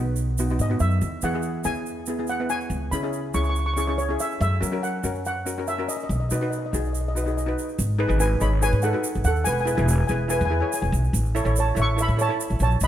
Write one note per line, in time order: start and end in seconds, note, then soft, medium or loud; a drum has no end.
0.00 0.55 B1 medium
0.00 0.22 B3 medium
0.00 0.22 D#4 medium
0.00 0.22 F#4 medium
0.00 0.64 B4 medium
0.16 shaker medium
0.38 0.45 B3 medium
0.38 0.46 D#4 medium
0.38 0.46 F#4 medium
0.38 shaker medium
0.49 0.62 B3 medium
0.49 0.63 D#4 medium
0.49 0.63 F#4 medium
0.49 shaker soft
0.59 0.78 G#2 medium
0.59 0.82 D#5 medium
0.59 shaker medium
0.70 1.02 B3 medium
0.70 1.02 D#4 medium
0.70 1.02 F#4 medium
0.79 1.00 F#2 medium
0.79 1.24 E5 medium
0.79 shaker medium
0.90 shaker soft
1.01 1.21 E2 medium
1.01 shaker medium
1.22 1.62 E3 medium
1.22 1.29 B3 medium
1.22 1.30 E4 medium
1.22 1.30 G#4 medium
1.22 1.63 F#5 medium
1.22 shaker medium
1.34 1.53 B3 medium
1.34 1.53 E4 medium
1.34 1.53 G#4 medium
1.42 shaker medium
1.64 2.46 E2 medium
1.64 1.90 B3 medium
1.64 1.90 E4 medium
1.64 1.91 G#4 medium
1.64 2.25 G#5 medium
1.64 shaker medium
1.74 shaker soft
1.86 shaker medium
2.06 2.14 B3 medium
2.06 2.14 E4 medium
2.06 2.15 G#4 medium
2.06 shaker medium
2.19 2.31 B3 medium
2.19 2.31 E4 medium
2.19 2.31 G#4 medium
2.27 2.51 F#5 medium
2.27 shaker medium
2.40 2.71 B3 medium
2.40 2.71 E4 medium
2.40 2.72 B4 medium
2.50 2.89 G#5 medium
2.50 shaker medium
2.61 shaker soft
2.70 2.90 C#2 medium
2.70 shaker medium
2.91 3.31 C#3 medium
2.91 2.99 C#4 medium
2.91 2.99 E4 medium
2.91 3.00 G#4 medium
2.91 3.31 B5 medium
2.91 shaker medium
3.03 3.22 C#4 medium
3.03 3.22 E4 medium
3.03 3.23 G#4 medium
3.13 shaker medium
3.34 4.15 C#2 medium
3.34 3.60 C#4 medium
3.34 3.60 E4 medium
3.34 3.60 G#4 medium
3.34 3.42 C#6 medium
3.34 shaker medium
3.44 3.48 C#6 medium
3.44 shaker soft
3.49 3.57 C#6 medium
3.56 3.65 C#6 medium
3.56 shaker medium
3.66 3.72 C#6 medium
3.74 3.83 C#4 medium
3.74 3.83 E4 medium
3.74 3.78 C#6 medium
3.74 shaker medium
3.78 3.84 G#4 medium
3.78 3.86 C#6 medium
3.87 4.00 C#4 medium
3.87 4.01 E4 medium
3.87 4.01 G#4 medium
3.87 3.95 C#6 medium
3.98 4.20 C#5 medium
3.98 shaker medium
4.09 4.40 C#4 medium
4.09 4.41 E4 medium
4.09 4.41 G#4 medium
4.19 4.40 E5 medium
4.19 shaker medium
4.31 shaker soft
4.41 4.60 F#2 loud
4.41 4.80 E5 medium
4.41 shaker medium
4.60 5.01 F#3 medium
4.60 4.67 C#4 medium
4.60 4.67 F#4 medium
4.60 4.68 A#4 medium
4.60 shaker medium
4.72 4.91 C#4 medium
4.72 4.91 F#4 medium
4.72 4.92 A#4 medium
4.83 5.25 F#5 medium
4.83 shaker medium
5.04 5.84 F#2 medium
5.04 5.29 C#4 medium
5.04 5.29 F#4 medium
5.04 5.30 A#4 medium
5.04 shaker medium
5.15 shaker soft
5.25 5.69 F#5 medium
5.25 shaker medium
5.46 5.52 C#4 medium
5.46 5.53 F#4 medium
5.46 5.53 A#4 medium
5.46 shaker medium
5.58 5.70 C#4 medium
5.58 5.70 F#4 medium
5.58 5.71 A#4 medium
5.67 5.87 E5 medium
5.67 shaker medium
5.78 6.09 C#4 medium
5.78 6.10 F#4 medium
5.78 6.10 A#4 medium
5.88 5.95 D#5 medium
5.88 shaker medium
5.97 6.02 D#5 medium
5.97 shaker soft
6.04 6.10 D#5 medium
6.09 6.29 B1 medium
6.09 6.19 D#5 soft
6.09 shaker medium
6.20 6.26 D#5 medium
6.29 6.70 B2 medium
6.29 6.37 D#4 medium
6.29 6.37 F#4 medium
6.29 6.38 B4 medium
6.29 6.34 D#5 medium
6.29 shaker medium
6.35 6.41 D#5 medium
6.41 6.60 D#4 medium
6.41 6.60 F#4 medium
6.41 6.61 B4 medium
6.41 6.49 D#5 soft
6.50 6.56 D#5 medium
6.50 shaker medium
6.58 6.64 D#5 soft
6.66 6.71 D#5 medium
6.73 7.53 B1 medium
6.73 6.98 D#4 medium
6.73 6.98 F#4 medium
6.73 6.99 G#4 medium
6.73 6.79 D#5 soft
6.73 shaker medium
6.80 6.86 D#5 soft
6.85 6.92 D#5 soft
6.85 shaker soft
6.93 7.00 D#5 medium
6.93 shaker medium
7.01 7.07 D#5 soft
7.08 7.15 D#5 medium
7.15 7.21 D#4 medium
7.15 7.22 F#4 medium
7.15 7.22 B4 medium
7.15 7.23 D#5 soft
7.15 shaker medium
7.24 7.38 D#4 medium
7.24 7.38 F#4 medium
7.24 7.39 G#4 medium
7.24 7.29 D#5 medium
7.24 shaker soft
7.30 7.36 D#5 soft
7.38 7.45 D#5 medium
7.38 shaker medium
7.46 7.78 D#4 medium
7.46 7.78 F#4 medium
7.46 7.79 B4 medium
7.58 shaker medium
7.69 shaker soft
7.79 8.08 G#1 medium
7.79 shaker loud
7.99 8.05 D#4 medium
7.99 8.05 G#4 medium
7.99 8.06 B4 loud
8.08 8.39 G#1 medium
8.08 8.27 D#4 medium
8.08 8.28 G#4 medium
8.08 8.28 B4 medium
8.08 shaker soft
8.20 8.40 B4 medium
8.20 8.42 G#5 medium
8.20 shaker loud
8.40 8.70 G#1 medium
8.40 8.53 D#4 medium
8.40 8.54 G#4 medium
8.40 8.54 C#5 medium
8.40 8.61 D#5 medium
8.40 8.63 B5 medium
8.40 shaker medium
8.61 8.74 D#4 medium
8.61 8.75 G#4 medium
8.61 8.82 B4 medium
8.61 8.75 C#5 medium
8.61 8.82 G#5 loud
8.61 shaker loud
8.72 8.92 G#2 medium
8.72 shaker soft
8.82 8.89 D#4 medium
8.82 8.90 G#4 medium
8.82 9.23 A4 medium
8.82 8.90 B4 medium
8.82 9.24 F#5 medium
8.82 shaker medium
8.93 9.37 D#4 medium
8.93 9.38 F#4 medium
8.93 9.38 B4 medium
9.04 shaker loud
9.15 9.24 G#1 medium
9.15 shaker soft
9.24 9.44 D#2 medium
9.24 9.46 A4 medium
9.24 9.46 F#5 medium
9.24 shaker medium
9.36 shaker soft
9.44 9.76 E1 medium
9.44 9.54 B4 medium
9.44 9.52 G#5 loud
9.44 shaker loud
9.53 9.59 G#5 medium
9.58 9.66 G#5 medium
9.58 shaker soft
9.65 9.72 E4 medium
9.65 9.73 G#4 medium
9.65 9.73 B4 medium
9.65 9.74 G#5 medium
9.65 shaker medium
9.75 10.07 E1 medium
9.75 9.96 E4 medium
9.75 9.97 G#4 medium
9.75 9.97 B4 medium
9.75 9.81 G#5 medium
9.75 shaker soft
9.82 9.90 G#5 medium
9.88 9.99 G#5 medium
9.88 shaker medium
10.00 10.06 G#5 medium
10.07 10.38 E1 medium
10.07 10.22 E4 medium
10.07 10.22 G#4 medium
10.07 10.23 B4 medium
10.07 10.13 G#5 medium
10.07 shaker medium
10.14 10.21 G#5 medium
10.28 10.42 E4 medium
10.28 10.43 G#4 medium
10.28 10.43 B4 medium
10.28 10.37 G#5 medium
10.28 shaker loud
10.33 10.39 B4 medium
10.38 10.60 E2 medium
10.38 10.44 G#5 medium
10.38 shaker soft
10.45 10.52 G#5 medium
10.50 10.57 E4 medium
10.50 10.57 G#4 medium
10.50 10.58 B4 medium
10.50 10.59 G#5 medium
10.60 11.05 E4 medium
10.60 11.06 G#4 medium
10.60 11.06 C#5 medium
10.60 10.67 G#5 medium
10.68 10.73 G#5 medium
10.72 10.81 G#5 medium
10.72 shaker loud
10.82 10.92 E1 medium
10.82 10.89 G#5 medium
10.82 shaker soft
10.92 11.12 B1 medium
10.92 shaker medium
11.04 shaker soft
11.13 11.43 A1 medium
11.13 shaker loud
11.26 shaker soft
11.35 11.41 E4 medium
11.35 11.41 A4 medium
11.35 11.42 C#5 medium
11.35 shaker medium
11.45 11.75 A1 medium
11.45 11.64 E4 medium
11.45 11.64 A4 medium
11.45 11.65 C#5 medium
11.45 shaker soft
11.56 11.77 C#5 medium
11.56 shaker medium
11.60 11.79 A5 medium
11.75 12.06 A1 loud
11.75 11.89 E4 medium
11.75 11.89 A4 medium
11.75 11.90 C#5 medium
11.75 shaker medium
11.79 11.98 E5 medium
11.79 12.01 C#6 loud
11.97 12.10 E4 medium
11.97 12.11 A4 medium
11.97 12.11 C#5 medium
11.97 12.19 E5 medium
11.97 shaker medium
12.02 12.22 B5 medium
12.08 12.28 A2 medium
12.08 shaker soft
12.17 12.24 E4 medium
12.17 12.25 A4 medium
12.17 12.25 C#5 medium
12.17 12.59 C#5 medium
12.17 shaker medium
12.22 12.59 A5 loud
12.29 12.73 E4 medium
12.29 12.73 A4 medium
12.29 12.74 C#5 medium
12.40 shaker medium
12.50 12.59 A1 medium
12.50 shaker soft
12.60 12.80 A#1 medium
12.60 12.71 C#5 medium
12.60 12.72 A5 medium
12.60 shaker medium
12.71 shaker soft
12.80 12.87 B1 medium
12.80 12.87 D#5 medium
12.80 12.87 B5 loud
12.80 shaker medium